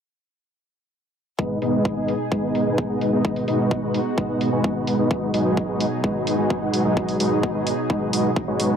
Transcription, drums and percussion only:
1.39 kick
1.62 open hi-hat
1.85 kick
2.08 open hi-hat
2.32 kick
2.55 open hi-hat
2.78 kick
3.01 open hi-hat
3.25 kick
3.36 open hi-hat
3.48 open hi-hat
3.71 kick
3.94 open hi-hat
4.18 kick
4.41 open hi-hat
4.64 kick
4.87 open hi-hat
5.11 kick
5.34 open hi-hat
5.57 kick
5.80 open hi-hat
6.04 kick
6.27 open hi-hat
6.50 kick
6.74 open hi-hat
6.97 kick
7.08 open hi-hat
7.20 open hi-hat
7.43 kick
7.67 open hi-hat
7.90 kick
8.13 open hi-hat
8.36 kick
8.60 open hi-hat

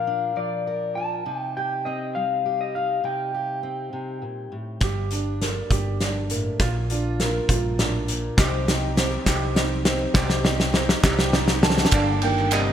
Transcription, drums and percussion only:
4.81 kick, snare, closed hi-hat
5.11 closed hi-hat
5.42 snare, closed hi-hat
5.71 kick, closed hi-hat
6.01 snare, closed hi-hat
6.30 closed hi-hat
6.60 kick, snare, closed hi-hat
6.90 closed hi-hat
7.20 snare, closed hi-hat
7.49 kick, closed hi-hat
7.79 snare, closed hi-hat
8.08 closed hi-hat
8.38 kick, snare, clap, closed hi-hat
8.68 snare, closed hi-hat
8.97 snare, closed hi-hat
9.13 clap
9.26 kick, snare, clap, closed hi-hat
9.56 snare, closed hi-hat
9.85 snare, clap, closed hi-hat
10.14 kick, snare, clap
10.30 snare
10.45 snare
10.60 snare
10.74 snare
10.89 snare
11.04 kick, snare, clap
11.19 snare
11.33 snare
11.48 snare, clap
11.63 snare, clap
11.70 snare
11.78 snare
11.85 snare
11.91 kick, clap, ride
12.22 ride
12.39 clap
12.51 clap, ride

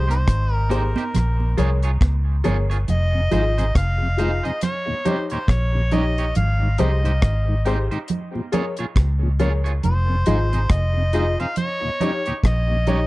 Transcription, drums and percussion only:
0.10 closed hi-hat, high conga
0.28 kick, cross-stick, closed hi-hat
0.70 closed hi-hat, high conga
0.96 closed hi-hat, high conga
1.14 cross-stick, closed hi-hat, low conga
1.40 high conga
1.58 closed hi-hat, low conga
1.82 closed hi-hat
2.01 kick, cross-stick, closed hi-hat, high conga
2.44 closed hi-hat, high conga, low conga
2.71 closed hi-hat
2.88 closed hi-hat, low conga
3.32 closed hi-hat, low conga
3.58 closed hi-hat
3.75 kick, cross-stick, closed hi-hat
4.18 closed hi-hat
4.45 closed hi-hat
4.61 cross-stick, closed hi-hat, low conga
4.88 high conga
5.05 closed hi-hat, low conga
5.30 closed hi-hat
5.48 kick, cross-stick, closed hi-hat
5.91 closed hi-hat, low conga
6.18 closed hi-hat
6.35 closed hi-hat, low conga
6.78 closed hi-hat, low conga
7.05 closed hi-hat
7.22 kick, cross-stick, closed hi-hat
7.66 closed hi-hat
7.92 closed hi-hat
8.08 closed hi-hat, low conga
8.35 high conga
8.53 closed hi-hat, low conga
8.77 closed hi-hat
8.96 kick, cross-stick, closed hi-hat
9.39 closed hi-hat, low conga
9.66 closed hi-hat
9.83 closed hi-hat, low conga
10.26 closed hi-hat, low conga
10.53 closed hi-hat
10.70 kick, cross-stick, closed hi-hat
11.13 closed hi-hat
11.40 closed hi-hat
11.56 closed hi-hat, low conga
11.82 high conga
12.00 closed hi-hat, low conga
12.26 closed hi-hat
12.44 kick, cross-stick, closed hi-hat
12.87 closed hi-hat, low conga

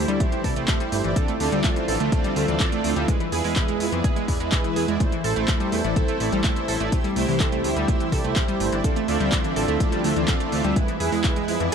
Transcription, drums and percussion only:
0.08 closed hi-hat
0.20 kick, closed hi-hat
0.32 closed hi-hat
0.44 kick, open hi-hat
0.56 closed hi-hat
0.68 kick, clap, closed hi-hat
0.80 closed hi-hat
0.92 open hi-hat
1.04 closed hi-hat
1.16 kick, closed hi-hat
1.28 closed hi-hat
1.40 open hi-hat
1.52 closed hi-hat
1.64 kick, clap, closed hi-hat
1.76 closed hi-hat
1.88 open hi-hat
2.00 closed hi-hat
2.12 kick, closed hi-hat
2.24 closed hi-hat
2.36 open hi-hat
2.48 closed hi-hat
2.60 kick, clap, closed hi-hat
2.72 closed hi-hat
2.84 open hi-hat
2.96 closed hi-hat
3.08 kick, closed hi-hat
3.20 closed hi-hat
3.32 open hi-hat
3.44 open hi-hat
3.56 kick, clap, closed hi-hat
3.68 closed hi-hat
3.80 open hi-hat
3.92 closed hi-hat
4.04 kick, closed hi-hat
4.16 closed hi-hat
4.28 kick, open hi-hat
4.40 closed hi-hat
4.52 kick, clap, closed hi-hat
4.64 closed hi-hat
4.76 open hi-hat
4.88 closed hi-hat
5.00 kick, closed hi-hat
5.12 closed hi-hat
5.24 open hi-hat
5.36 closed hi-hat
5.48 kick, clap, closed hi-hat
5.60 closed hi-hat
5.72 open hi-hat
5.84 closed hi-hat
5.96 kick, closed hi-hat
6.08 closed hi-hat
6.20 open hi-hat
6.32 closed hi-hat
6.44 kick, clap, closed hi-hat
6.56 closed hi-hat
6.68 open hi-hat
6.80 closed hi-hat
6.92 kick, closed hi-hat
7.04 closed hi-hat
7.16 open hi-hat
7.28 open hi-hat
7.40 kick, clap, closed hi-hat
7.52 closed hi-hat
7.64 open hi-hat
7.76 closed hi-hat
7.88 kick, closed hi-hat
8.00 closed hi-hat
8.12 kick, open hi-hat
8.24 closed hi-hat
8.36 kick, clap, closed hi-hat
8.48 closed hi-hat
8.60 open hi-hat
8.72 closed hi-hat
8.84 kick, closed hi-hat
8.96 closed hi-hat
9.08 open hi-hat
9.20 closed hi-hat
9.32 kick, clap, closed hi-hat
9.44 closed hi-hat
9.56 open hi-hat
9.68 closed hi-hat
9.80 kick, closed hi-hat
9.92 closed hi-hat
10.04 open hi-hat
10.16 closed hi-hat
10.28 kick, clap, closed hi-hat
10.40 closed hi-hat
10.52 open hi-hat
10.64 closed hi-hat
10.76 kick, closed hi-hat
10.88 closed hi-hat
11.00 open hi-hat
11.12 open hi-hat
11.24 kick, clap, closed hi-hat
11.36 closed hi-hat
11.48 open hi-hat
11.60 closed hi-hat

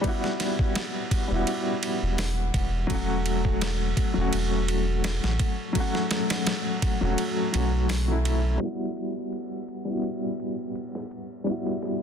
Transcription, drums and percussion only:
0.04 kick, ride
0.24 snare
0.40 snare, ride
0.59 kick
0.75 snare, ride
1.11 kick, ride
1.47 ride
1.83 ride
2.18 snare, open hi-hat
2.54 kick, ride
2.90 kick, ride
3.26 ride
3.45 kick
3.61 snare, ride
3.97 kick, ride
4.33 ride
4.68 ride
5.04 snare, ride
5.24 snare
5.39 kick, ride
5.75 kick, ride
5.95 snare
6.11 snare, ride
6.30 snare, ride
6.47 snare, ride
6.82 kick, ride
7.18 ride
7.54 ride
7.89 snare, open hi-hat
8.25 ride
8.61 ride
8.97 ride
9.33 ride
9.68 ride
10.04 ride
10.40 ride
10.75 ride
10.95 snare
11.11 ride
11.47 ride
11.66 snare
11.82 snare, ride

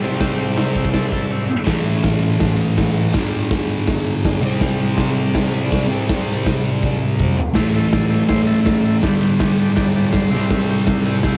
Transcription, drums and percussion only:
0.21 kick, snare, crash
0.58 snare, crash
0.76 kick
0.85 kick
0.94 kick, snare, crash
1.12 kick
1.67 kick, snare, ride
1.86 ride
2.04 kick, snare, ride
2.23 ride
2.40 kick, snare, ride
2.61 ride
2.78 kick, snare, ride
2.97 ride
3.14 kick, snare, ride
3.32 ride
3.51 kick, snare, ride
3.70 ride
3.87 kick, snare, ride
4.06 ride
4.25 kick, snare, ride
4.43 ride
4.61 kick, snare, ride
4.80 ride
4.98 kick, snare, ride
5.17 ride
5.35 kick, snare, ride
5.54 ride
5.72 kick, snare, ride
5.91 ride
6.09 kick, snare, ride
6.29 ride
6.46 kick, snare, ride
6.65 ride
6.83 kick, snare
7.19 kick, mid tom
7.39 floor tom
7.55 kick, snare, crash
7.74 ride
7.93 kick, snare, ride
8.12 ride
8.29 kick, snare, ride
8.47 ride
8.66 kick, snare, ride
8.85 ride
9.03 kick, snare, ride
9.23 ride
9.40 kick, snare, ride
9.58 ride
9.77 kick, snare, ride
9.95 ride
10.13 kick, snare, ride
10.32 ride
10.51 kick, snare, ride
10.69 ride
10.87 kick, snare, ride
11.05 ride
11.23 kick, snare, ride

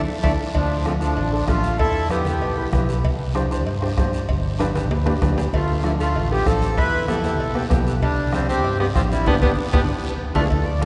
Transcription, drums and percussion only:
0.23 bombo low, high conga, high timbale, long guiro
0.54 bombo low, cowbell, high conga, long guiro
0.85 bombo rim, high conga, short guiro
1.01 short guiro
1.17 cowbell, high conga, long guiro
1.48 bombo low, bombo rim, high conga, low timbale, short guiro
1.63 short guiro
1.78 bombo low, cowbell, high conga, long guiro
2.09 bombo rim, high conga, short guiro
2.25 low conga, short guiro
2.41 cowbell, high conga, long guiro
2.73 bombo low, bombo rim, high conga, low conga, low timbale, short guiro
2.89 short guiro
3.04 bombo low, cowbell, high conga, long guiro
3.35 bombo rim, high conga, short guiro
3.51 short guiro
3.67 cowbell, high conga, long guiro
3.82 bombo rim
3.98 bombo low, bombo rim, high conga, low timbale, short guiro
4.13 short guiro
4.29 bombo low, cowbell, high conga, long guiro
4.60 bombo rim, high conga, high timbale, short guiro
4.75 low conga, high timbale, short guiro
4.91 cowbell, high conga, low timbale, long guiro
5.06 bombo rim, low timbale
5.22 bombo low, bombo rim, high conga, low conga, low timbale, short guiro
5.38 low timbale, short guiro
5.53 bombo low, cowbell, high conga, long guiro
5.84 bombo rim, high conga, short guiro
6.00 short guiro
6.16 cowbell, high conga, long guiro
6.46 bombo low, bombo rim, high conga, short guiro
6.62 short guiro
6.77 bombo low, cowbell, high conga, long guiro
7.08 bombo rim, high conga, short guiro
7.24 low conga, short guiro
7.40 cowbell, high conga, long guiro
7.55 bombo rim
7.70 bombo low, bombo rim, high conga, low conga, low timbale, short guiro
7.87 short guiro
8.02 bombo low, cowbell, high conga, long guiro
8.33 bombo rim, high conga, short guiro
8.49 short guiro
8.64 cowbell, high conga, long guiro
8.80 bombo rim
8.95 bombo low, bombo rim, high conga, short guiro
9.12 short guiro
9.26 bombo low, low conga, high timbale, long guiro
9.42 bombo low, low conga, high timbale, long guiro
9.73 bombo low, low conga, high timbale, long guiro
10.35 bombo low, low conga, high timbale, long guiro
10.50 bombo low, cowbell, long guiro
10.67 high conga
10.82 bombo rim

